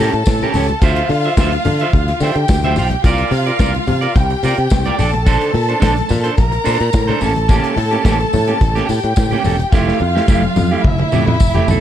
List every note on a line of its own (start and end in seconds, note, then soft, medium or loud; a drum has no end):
0.00 0.13 C#4 medium
0.00 0.13 G4 loud
0.00 0.80 A4 medium
0.00 0.13 A#4 loud
0.00 0.80 A5 medium
0.00 high conga medium
0.13 0.22 A2 loud
0.13 closed hi-hat soft
0.26 0.45 A2 loud
0.26 muted clean electric guitar stroke soft
0.26 kick loud
0.26 snare loud
0.26 closed hi-hat medium
0.26 tambourine medium
0.41 0.54 C#4 medium
0.41 0.55 G4 medium
0.41 0.54 A#4 medium
0.41 closed hi-hat soft
0.41 high conga medium
0.54 0.72 C#2 medium
0.54 0.65 C#4 medium
0.54 0.66 G4 medium
0.54 0.66 C#5 medium
0.54 open hi-hat medium
0.54 tambourine medium
0.54 low conga medium
0.69 muted clean electric guitar stroke soft
0.69 closed hi-hat soft
0.69 high conga medium
0.81 1.00 D2 loud
0.81 2.18 F4 medium
0.81 1.08 F4 loud
0.81 1.08 C5 loud
0.81 1.09 E5 loud
0.81 2.18 F5 loud
0.81 kick loud
0.81 closed hi-hat medium
0.81 tambourine medium
0.96 closed hi-hat soft
0.96 muted conga soft
1.09 1.28 D3 loud
1.09 muted clean electric guitar stroke medium
1.09 open hi-hat medium
1.09 high conga medium
1.24 1.35 F4 soft
1.24 1.35 C5 medium
1.24 1.34 E5 medium
1.24 closed hi-hat soft
1.37 1.56 D2 loud
1.37 1.52 F4 medium
1.37 1.52 C5 loud
1.37 1.53 E5 medium
1.37 kick loud
1.37 snare loud
1.37 closed hi-hat medium
1.37 tambourine loud
1.52 closed hi-hat medium
1.52 muted conga soft
1.65 1.83 D3 loud
1.65 muted clean electric guitar stroke soft
1.65 open hi-hat medium
1.65 tambourine medium
1.65 high conga medium
1.65 low conga medium
1.80 1.91 F4 medium
1.80 1.91 C5 medium
1.80 1.90 E5 medium
1.80 closed hi-hat medium
1.93 2.11 D2 loud
1.93 kick loud
1.93 closed hi-hat medium
1.93 muted conga soft
1.93 high conga medium
2.08 muted clean electric guitar stroke medium
2.08 snare soft
2.08 closed hi-hat soft
2.20 2.30 D3 loud
2.20 2.35 F4 medium
2.20 3.02 G4 medium
2.20 2.36 C5 medium
2.20 2.36 E5 medium
2.20 3.03 G5 medium
2.20 open hi-hat medium
2.20 tambourine medium
2.20 high conga medium
2.35 2.44 D3 loud
2.35 muted clean electric guitar stroke soft
2.35 closed hi-hat soft
2.48 2.78 D2 medium
2.48 muted clean electric guitar stroke soft
2.48 kick loud
2.48 snare loud
2.48 closed hi-hat medium
2.48 tambourine loud
2.63 2.76 F4 medium
2.63 2.76 C5 medium
2.63 2.76 E5 loud
2.63 closed hi-hat soft
2.63 high conga medium
2.76 2.95 B1 medium
2.76 2.88 F4 medium
2.76 2.88 C5 medium
2.76 2.89 F5 medium
2.76 open hi-hat medium
2.76 tambourine medium
2.76 low conga medium
2.91 muted clean electric guitar stroke soft
2.91 closed hi-hat soft
2.91 high conga medium
3.04 3.22 C2 loud
3.04 3.30 F4 loud
3.04 4.13 F4 medium
3.04 3.31 A#4 loud
3.04 3.31 D5 loud
3.04 4.14 F5 loud
3.04 kick loud
3.04 closed hi-hat medium
3.04 tambourine medium
3.18 closed hi-hat medium
3.18 muted conga soft
3.31 3.50 C3 loud
3.31 muted clean electric guitar stroke soft
3.31 open hi-hat medium
3.31 tambourine soft
3.31 high conga medium
3.46 3.57 F4 medium
3.46 3.56 A#4 medium
3.46 3.56 D5 medium
3.46 closed hi-hat soft
3.59 3.78 C2 medium
3.59 3.73 F4 medium
3.59 3.74 A#4 medium
3.59 3.73 D5 loud
3.59 kick loud
3.59 snare loud
3.59 closed hi-hat medium
3.59 tambourine loud
3.74 muted clean electric guitar stroke medium
3.74 closed hi-hat soft
3.74 muted conga soft
3.86 4.06 C3 loud
3.86 muted clean electric guitar stroke soft
3.86 open hi-hat medium
3.86 tambourine soft
3.86 high conga medium
3.86 low conga medium
4.01 4.12 F4 medium
4.01 4.12 A#4 medium
4.01 4.11 D5 medium
4.01 closed hi-hat medium
4.15 4.34 C2 loud
4.15 4.97 G4 medium
4.15 4.97 G5 loud
4.15 kick loud
4.15 closed hi-hat medium
4.15 tambourine soft
4.15 muted conga soft
4.15 high conga medium
4.30 muted clean electric guitar stroke soft
4.30 closed hi-hat soft
4.43 4.53 C3 loud
4.43 4.57 F4 medium
4.43 4.58 A#4 medium
4.43 4.57 D5 medium
4.43 open hi-hat medium
4.43 tambourine medium
4.43 high conga medium
4.58 4.67 C3 loud
4.58 closed hi-hat soft
4.70 4.89 C2 loud
4.70 muted clean electric guitar stroke soft
4.70 kick loud
4.70 snare loud
4.70 closed hi-hat medium
4.70 tambourine medium
4.85 4.98 F4 medium
4.85 4.98 A#4 medium
4.85 4.98 D5 medium
4.85 closed hi-hat soft
4.85 high conga medium
4.98 5.36 A#1 loud
4.98 5.09 D4 medium
4.98 6.35 A4 medium
4.98 5.10 A4 medium
4.98 5.10 D5 medium
4.98 6.35 A5 medium
4.98 open hi-hat medium
4.98 tambourine medium
4.98 low conga medium
5.13 muted clean electric guitar stroke soft
5.13 closed hi-hat soft
5.13 high conga medium
5.26 5.52 D4 loud
5.26 5.52 A4 loud
5.26 5.53 C5 loud
5.26 kick loud
5.26 closed hi-hat medium
5.26 tambourine medium
5.41 closed hi-hat soft
5.54 5.73 A#2 loud
5.54 muted clean electric guitar stroke soft
5.54 open hi-hat medium
5.54 high conga medium
5.69 5.79 D4 medium
5.69 5.79 A4 medium
5.69 5.78 C5 medium
5.69 closed hi-hat soft
5.80 6.01 A#1 medium
5.80 5.95 D4 medium
5.80 5.95 A4 loud
5.80 5.94 C5 loud
5.80 kick loud
5.80 snare loud
5.80 closed hi-hat medium
5.80 tambourine loud
5.96 muted clean electric guitar stroke medium
5.96 closed hi-hat medium
6.09 6.29 A#2 loud
6.09 muted clean electric guitar stroke soft
6.09 open hi-hat medium
6.09 tambourine medium
6.09 high conga medium
6.09 low conga medium
6.24 6.35 D4 medium
6.24 6.34 A4 medium
6.24 6.34 C5 medium
6.24 closed hi-hat medium
6.37 6.56 A#1 loud
6.37 7.20 A#4 medium
6.37 7.19 A#5 loud
6.37 kick loud
6.37 closed hi-hat medium
6.37 tambourine soft
6.37 muted conga soft
6.37 high conga medium
6.52 muted clean electric guitar stroke soft
6.52 closed hi-hat soft
6.52 muted conga soft
6.64 6.76 A#2 medium
6.64 6.79 D4 medium
6.64 6.79 A4 medium
6.64 6.79 C5 loud
6.64 open hi-hat medium
6.64 tambourine medium
6.64 high conga medium
6.80 6.89 A#2 loud
6.80 muted clean electric guitar stroke soft
6.80 closed hi-hat soft
6.93 7.12 A2 loud
6.93 muted clean electric guitar stroke soft
6.93 kick loud
6.93 snare loud
6.93 closed hi-hat medium
6.93 tambourine loud
6.93 muted conga soft
7.07 7.21 D4 medium
7.07 7.21 A4 medium
7.07 7.20 C5 medium
7.07 closed hi-hat soft
7.07 muted conga soft
7.07 high conga medium
7.20 7.58 A1 medium
7.20 7.32 A#3 medium
7.20 7.32 C#4 medium
7.20 8.85 A4 medium
7.20 7.33 A4 medium
7.20 8.85 A5 medium
7.20 open hi-hat medium
7.20 tambourine medium
7.20 low conga medium
7.35 muted clean electric guitar stroke soft
7.35 closed hi-hat soft
7.35 high conga medium
7.48 7.75 A#3 loud
7.48 7.75 C#4 loud
7.48 7.75 G4 loud
7.48 kick loud
7.48 closed hi-hat medium
7.48 tambourine medium
7.48 muted conga soft
7.64 closed hi-hat medium
7.64 muted conga soft
7.76 7.96 A2 loud
7.76 muted clean electric guitar stroke medium
7.76 open hi-hat medium
7.76 high conga medium
7.91 8.02 A#3 medium
7.91 8.02 C#4 medium
7.91 8.01 G4 medium
7.91 closed hi-hat soft
8.04 8.23 A1 loud
8.04 8.18 A#3 medium
8.04 8.19 C#4 loud
8.04 8.19 G4 loud
8.04 kick loud
8.04 snare loud
8.04 closed hi-hat medium
8.04 tambourine loud
8.20 muted clean electric guitar stroke soft
8.20 closed hi-hat soft
8.20 muted conga soft
8.33 8.52 A2 medium
8.33 muted clean electric guitar stroke soft
8.33 open hi-hat medium
8.33 tambourine medium
8.33 high conga medium
8.33 low conga loud
8.48 8.58 A#3 medium
8.48 8.58 C#4 medium
8.48 8.57 G4 medium
8.48 closed hi-hat medium
8.61 8.79 A1 loud
8.61 muted clean electric guitar stroke soft
8.61 kick loud
8.61 closed hi-hat medium
8.61 tambourine soft
8.61 high conga medium
8.75 8.88 A#3 medium
8.75 8.88 C#4 medium
8.75 8.88 G4 loud
8.75 snare soft
8.75 closed hi-hat soft
8.88 8.99 A2 loud
8.88 9.70 G4 medium
8.88 9.70 G5 medium
8.88 muted clean electric guitar stroke soft
8.88 open hi-hat medium
8.88 tambourine medium
8.88 high conga medium
9.03 9.12 A2 medium
9.03 muted clean electric guitar stroke soft
9.03 closed hi-hat soft
9.16 9.35 A2 medium
9.16 muted clean electric guitar stroke soft
9.16 kick loud
9.16 snare loud
9.16 closed hi-hat medium
9.16 tambourine loud
9.31 9.42 A#3 medium
9.31 9.44 C#4 medium
9.31 9.44 G4 medium
9.31 closed hi-hat soft
9.31 high conga medium
9.44 9.63 E1 medium
9.44 9.55 A#3 medium
9.44 9.56 C#4 medium
9.44 9.56 A4 medium
9.44 open hi-hat medium
9.44 tambourine medium
9.44 low conga medium
9.59 muted clean electric guitar stroke soft
9.59 closed hi-hat soft
9.59 high conga medium
9.72 9.91 F1 loud
9.72 9.98 A3 loud
9.72 9.99 E4 loud
9.72 10.82 F4 medium
9.72 9.99 G4 loud
9.72 10.82 F5 medium
9.72 kick loud
9.72 snare medium
9.72 tambourine medium
9.72 muted conga soft
9.88 snare medium
10.00 10.19 F2 loud
10.00 muted clean electric guitar stroke soft
10.00 high conga medium
10.15 10.26 A3 medium
10.15 10.25 E4 medium
10.15 10.25 G4 medium
10.15 snare medium
10.28 10.47 F1 loud
10.28 10.42 A3 medium
10.28 10.43 E4 medium
10.28 10.43 G4 loud
10.28 kick loud
10.28 high tom medium
10.28 tambourine loud
10.43 muted clean electric guitar stroke soft
10.43 high tom medium
10.43 muted conga soft
10.56 10.74 F2 loud
10.56 muted clean electric guitar stroke soft
10.56 high tom medium
10.56 tambourine medium
10.56 high conga medium
10.56 low conga medium
10.71 10.82 A3 medium
10.71 10.81 E4 medium
10.71 10.81 G4 medium
10.84 11.03 F1 loud
10.84 11.80 E4 medium
10.84 11.80 E5 loud
10.84 kick loud
10.84 mid tom loud
10.84 muted conga soft
10.84 high conga medium
10.99 muted clean electric guitar stroke soft
10.99 mid tom medium
10.99 muted conga soft
11.12 11.22 F2 medium
11.12 11.26 A3 medium
11.12 11.26 E4 loud
11.12 11.25 G4 loud
11.12 mid tom medium
11.12 tambourine medium
11.12 high conga medium
11.27 11.36 F2 loud
11.27 muted clean electric guitar stroke soft
11.27 mid tom medium
11.40 11.59 F1 loud
11.40 muted clean electric guitar stroke soft
11.40 kick loud
11.40 tambourine medium
11.54 11.67 A3 medium
11.54 11.67 E4 medium
11.54 11.67 G4 loud
11.54 floor tom loud
11.54 muted conga soft
11.54 high conga medium
11.68 11.80 B1 medium
11.68 11.79 A3 medium
11.68 11.79 E4 medium
11.68 11.80 A4 medium
11.68 floor tom loud
11.68 tambourine medium
11.68 low conga medium